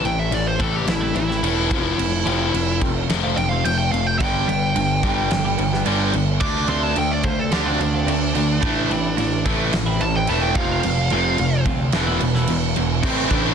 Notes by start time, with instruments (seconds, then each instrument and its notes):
0.04 picked electric bass A1, distorted electric guitar A2 E3, clean electric guitar E3 A3 C4 E4, lead electric guitar G5, crash
0.19 lead electric guitar E5
0.31 picked electric bass A1, distorted electric guitar A2 E3, lead electric guitar D5, muted clean electric guitar stroke, crash
0.48 lead electric guitar C5
0.59 picked electric bass A1, distorted electric guitar A2 E3 A3, clean electric guitar E3 A3 C4 E4, lead electric guitar A4, kick, crash
0.76 lead electric guitar G4
0.87 picked electric bass A1, distorted electric guitar A2 E3, lead electric guitar E4, muted clean electric guitar stroke, snare, crash
1.01 clean electric guitar E3 A3 C4 E4
1.14 picked electric bass A1, distorted electric guitar A2 E3, lead electric guitar E4, crash
1.28 clean electric guitar E3 A3 C4 E4, snare
1.43 picked electric bass E1, distorted electric guitar A2 E3 A3, crash
1.56 muted clean electric guitar stroke
1.71 picked electric bass F1, distorted electric guitar F2 C3 F3, kick, crash
1.98 picked electric bass F1, distorted electric guitar F2 C3, crash
2.11 muted clean electric guitar stroke
2.25 picked electric bass F1, distorted electric guitar F2 C3 F3, clean electric guitar F3 A3 C4 F4, crash
2.54 picked electric bass F1, distorted electric guitar F2 C3, muted clean electric guitar stroke, crash
2.80 picked electric bass F1, distorted electric guitar F2 C3, clean electric guitar F3 A3 C4 F4, kick, crash
3.09 picked electric bass F1, distorted electric guitar F2 C3 F3, muted clean electric guitar stroke, snare, crash
3.24 clean electric guitar F3 A3 C4 F4
3.36 picked electric bass F1, distorted electric guitar F2 C3, lead electric guitar G5, crash
3.49 clean electric guitar F3 A3 C4 F4, lead electric guitar F5
3.64 picked electric bass F1, distorted electric guitar F2 C3, lead electric guitar G5, crash
3.78 lead electric guitar G5, muted clean electric guitar stroke
3.92 picked electric bass F1, distorted electric guitar F2 C3, lead electric guitar F5, crash
4.06 lead electric guitar G5
4.19 picked electric bass G1, distorted electric guitar G2 D3 G3, lead electric guitar G5, kick, crash
4.34 muted clean electric guitar stroke
4.47 picked electric bass G1, distorted electric guitar G2 D3, clean electric guitar G3 B3 D4 G4, crash
4.75 picked electric bass G1, distorted electric guitar G2 D3, muted clean electric guitar stroke, crash
5.03 picked electric bass G1, distorted electric guitar G2 D3 G3, clean electric guitar G3 B3 D4 G4, kick, crash
5.31 picked electric bass G1, distorted electric guitar G2 D3, muted clean electric guitar stroke, snare, crash
5.44 clean electric guitar G3 B3 D4 G4
5.58 picked electric bass G1, distorted electric guitar G2 D3, crash
5.73 clean electric guitar G3 B3 D4 G4, snare
5.86 picked electric bass G1, distorted electric guitar G2 D3 G3, crash
6.00 muted clean electric guitar stroke
6.13 picked electric bass G1, distorted electric guitar G2 D3, crash
6.40 picked electric bass D2, distorted electric guitar D3 A3 D4, lead electric guitar D6, kick, crash
6.54 muted clean electric guitar stroke
6.68 picked electric bass D2, clean electric guitar D3 A3 C4 F4, distorted electric guitar D3 A3 D4, lead electric guitar C6, crash
6.83 lead electric guitar A5
6.96 picked electric bass D2, distorted electric guitar D3 A3, lead electric guitar G5, muted clean electric guitar stroke, crash
7.11 lead electric guitar D5
7.23 picked electric bass D2, distorted electric guitar D3 A3, clean electric guitar D3 A3 C4 F4, lead electric guitar C5, kick, crash
7.39 lead electric guitar A4
7.51 picked electric bass D2, distorted electric guitar D3 A3 D4, lead electric guitar G4, snare, crash
7.65 clean electric guitar D3 A3 C4 F4, lead electric guitar D4
7.79 picked electric bass D2, distorted electric guitar D3 A3, lead electric guitar D4, crash
7.93 clean electric guitar D3 A3 C4 F4
8.06 picked electric bass D2, distorted electric guitar D3 A3, crash
8.22 muted clean electric guitar stroke
8.35 picked electric bass D2, distorted electric guitar D3 A3, crash
8.61 picked electric bass A1, distorted electric guitar A2, overdriven electric guitar E3 A3, kick, crash
8.65 distorted electric guitar E3 A3
8.77 muted clean electric guitar stroke
8.90 picked electric bass A1, distorted electric guitar A2 E3, clean electric guitar E3 A3 C4 E4, crash
9.18 picked electric bass A1, distorted electric guitar A2 E3, muted clean electric guitar stroke, crash
9.45 picked electric bass A1, distorted electric guitar A2 E3 A3, clean electric guitar E3 A3 C4 E4, kick, crash
9.73 picked electric bass A1, distorted electric guitar A2 E3, muted clean electric guitar stroke, snare, crash
9.86 clean electric guitar E3 A3 C4 E4
10.00 picked electric bass A1, distorted electric guitar A2 E3, lead electric guitar A5, crash
10.15 clean electric guitar E3 A3 C4 E4, lead electric guitar G5
10.27 picked electric bass E1, distorted electric guitar A2 E3 A3, lead electric guitar A5, crash
10.43 lead electric guitar G5, muted clean electric guitar stroke
10.55 picked electric bass F1, distorted electric guitar F2 C3 F3, lead electric guitar F5, kick, crash
10.83 picked electric bass F1, distorted electric guitar F2 C3, crash
10.97 muted clean electric guitar stroke
11.10 picked electric bass F1, distorted electric guitar F2 C3 F3, clean electric guitar F3 A3 C4 F4, crash
11.38 picked electric bass F1, distorted electric guitar F2 C3, muted clean electric guitar stroke, crash
11.65 picked electric bass D2, distorted electric guitar F2 C3, clean electric guitar F3 A3 C4 F4, kick, crash
11.92 picked electric bass E1, distorted electric guitar E2 B2 E3, muted clean electric guitar stroke, snare, crash
12.07 clean electric guitar E3 A3 B3 E4
12.20 picked electric bass E1, distorted electric guitar E2 B2, crash
12.35 clean electric guitar E3 A3 B3 E4, snare
12.47 picked electric bass E1, distorted electric guitar E2 B2, crash
12.63 muted clean electric guitar stroke
12.76 picked electric bass E1, distorted electric guitar E2 B2, crash
13.03 picked electric bass A1, distorted electric guitar A2 E3 A3 C4 E4, lead electric guitar C4, kick, crash
13.29 picked electric bass A1, distorted electric guitar E3 A3 C4, lead electric guitar D4, kick, crash
13.33 distorted electric guitar E4
13.45 distorted electric guitar A3 C4 E4